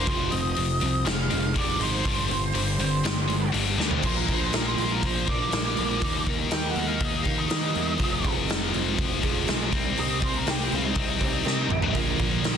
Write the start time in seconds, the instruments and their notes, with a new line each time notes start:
Already playing: lead electric guitar C5
0.06 picked electric bass F1, distorted electric guitar F2 C3 F3, steel-string acoustic guitar F3, kick, open hi-hat
0.31 picked electric bass F1, distorted electric guitar F2 C3, steel-string acoustic guitar C4, lead electric guitar D#5, open hi-hat
0.55 picked electric bass F1, distorted electric guitar F2 C3, steel-string acoustic guitar F3, open hi-hat
0.80 picked electric bass C2, distorted electric guitar F2 C3, steel-string acoustic guitar C4, open hi-hat
1.05 picked electric bass F1, distorted electric guitar F2 C3, steel-string acoustic guitar G#4, lead electric guitar F5, snare, open hi-hat
1.30 picked electric bass F1, distorted electric guitar F2 C3, steel-string acoustic guitar D#4, open hi-hat
1.54 picked electric bass F1, distorted electric guitar F2 C3 F3, steel-string acoustic guitar C4, lead electric guitar D5, kick, open hi-hat
1.79 picked electric bass G#1, distorted electric guitar F2 C3 F3, steel-string acoustic guitar D#4, lead electric guitar C5, open hi-hat
2.04 steel-string acoustic guitar G2, distorted electric guitar G2 D3 G3, kick, open hi-hat
2.28 picked electric bass G1, distorted electric guitar G2 D3, steel-string acoustic guitar C4, open hi-hat
2.52 picked electric bass G1, distorted electric guitar G2 D3, steel-string acoustic guitar G3, open hi-hat
2.79 picked electric bass G1, distorted electric guitar G2 D3, steel-string acoustic guitar C4, open hi-hat
3.03 picked electric bass G1, distorted electric guitar G2 D3, steel-string acoustic guitar G4, snare, open hi-hat
3.28 distorted electric guitar G2 D3, steel-string acoustic guitar D4, open hi-hat
3.52 picked electric bass G1, distorted electric guitar G2 D3 G3, steel-string acoustic guitar C4, open hi-hat
3.78 picked electric bass D2, distorted electric guitar G2 D3 G3, steel-string acoustic guitar D4, snare
3.91 floor tom
4.02 picked electric bass A#1, distorted electric guitar A#2 F3 A#3, steel-string acoustic guitar A#2 F3 A#3 D4 F4, lead electric guitar C5, kick, crash
4.16 lead electric guitar A#4
4.27 picked electric bass A#1, steel-string acoustic guitar A#3 D4 F4, kick, open hi-hat
4.31 lead electric guitar C5
4.44 lead electric guitar C5
4.52 picked electric bass A#1, steel-string acoustic guitar F3 A#3 D4 F4, lead electric guitar A#4, snare, open hi-hat
4.66 lead electric guitar C5
4.77 picked electric bass A#1, steel-string acoustic guitar A#3 D4 F4, lead electric guitar C5, open hi-hat
4.92 lead electric guitar A#4
5.03 picked electric bass A#1, lead electric guitar C5, kick, open hi-hat
5.26 picked electric bass A#1, distorted electric guitar F3 A#3, steel-string acoustic guitar A#3 D4 F4, lead electric guitar D5, kick, open hi-hat
5.30 distorted electric guitar A#2
5.50 picked electric bass A#1, distorted electric guitar A#2 F3 A#3, steel-string acoustic guitar A#2 F3 A#3 D4 F4, snare, open hi-hat
5.77 picked electric bass A#1, open hi-hat
5.99 picked electric bass D#2, distorted electric guitar D#3 A#3, steel-string acoustic guitar D#3 A#3 D#4 G4, kick, open hi-hat
6.03 distorted electric guitar D#4
6.25 picked electric bass D#2, steel-string acoustic guitar A#3 D#4 G4, kick, open hi-hat
6.49 picked electric bass D#2, steel-string acoustic guitar D#3 A#3 D#4 G4, snare, open hi-hat
6.53 lead electric guitar G5
6.70 steel-string acoustic guitar G4, lead electric guitar F#5
6.75 picked electric bass D#2, steel-string acoustic guitar A#3 D#4, open hi-hat
6.87 lead electric guitar F5
7.00 picked electric bass D#2, kick, open hi-hat
7.05 lead electric guitar D#5
7.20 distorted electric guitar D#4, steel-string acoustic guitar G4, lead electric guitar F5
7.25 picked electric bass D#2, distorted electric guitar D#3 A#3, steel-string acoustic guitar A#3 D#4, kick, open hi-hat
7.38 lead electric guitar D#5
7.48 distorted electric guitar D#3 A#3 D#4, steel-string acoustic guitar D#3 A#3 D#4 G4, picked electric bass D#3, snare, open hi-hat
7.75 picked electric bass E2, open hi-hat
7.96 distorted electric guitar F2 C3, steel-string acoustic guitar F2 C3 F3 G#3, open hi-hat
8.00 picked electric bass F1, distorted electric guitar F3, steel-string acoustic guitar C4 G#4, kick
8.22 picked electric bass F1, steel-string acoustic guitar F3 G#3 C4 G#4, kick, open hi-hat
8.46 picked electric bass F1, steel-string acoustic guitar F3 G#3 C4 G#4, open hi-hat
8.51 snare
8.72 picked electric bass F1, steel-string acoustic guitar F3 G#3 C4 G#4, open hi-hat
8.99 picked electric bass F1, kick, open hi-hat
9.20 picked electric bass F1, distorted electric guitar F2 C3 F3, steel-string acoustic guitar F3 G#3 C4 G#4, kick, open hi-hat
9.45 picked electric bass B1, distorted electric guitar F2 C3 F3, steel-string acoustic guitar F2 C3 F3 G#3 C4, snare, open hi-hat
9.49 steel-string acoustic guitar G#4
9.70 picked electric bass C2, distorted electric guitar C3 G3 C4, steel-string acoustic guitar D#3 G3 C4 G4, kick, open hi-hat
9.74 steel-string acoustic guitar C3
9.96 picked electric bass C2, steel-string acoustic guitar C3 D#3 G3 C4 G4, lead electric guitar D#5, open hi-hat
10.20 picked electric bass C2, steel-string acoustic guitar G3 C4 G4, lead electric guitar C5, kick, open hi-hat
10.37 lead electric guitar A#4
10.45 picked electric bass C2, steel-string acoustic guitar D#3 G3 C4 G4, lead electric guitar G4, snare, open hi-hat
10.71 picked electric bass C2, steel-string acoustic guitar G3 C4 G4, lead electric guitar F4, open hi-hat
10.85 lead electric guitar D#4
10.94 picked electric bass C2, distorted electric guitar C3 G3 C4, kick, open hi-hat
11.17 picked electric bass C2, distorted electric guitar G3 C4, steel-string acoustic guitar C4 G4, kick, open hi-hat
11.22 distorted electric guitar C3, steel-string acoustic guitar G3, lead electric guitar D#4
11.43 steel-string acoustic guitar C3 D#3 G3 C4 G4, picked electric bass C3, snare
11.69 picked electric bass A1, mid tom
11.82 floor tom
11.92 picked electric bass A#1, distorted electric guitar A#2 F3, steel-string acoustic guitar A#2 D3 A#3 D4, kick, open hi-hat
11.96 distorted electric guitar A#3, steel-string acoustic guitar F4
12.19 picked electric bass A#1, steel-string acoustic guitar A#3 D4 F4, kick, open hi-hat
12.42 picked electric bass A#1, steel-string acoustic guitar D3 A#3 D4 F4, snare, open hi-hat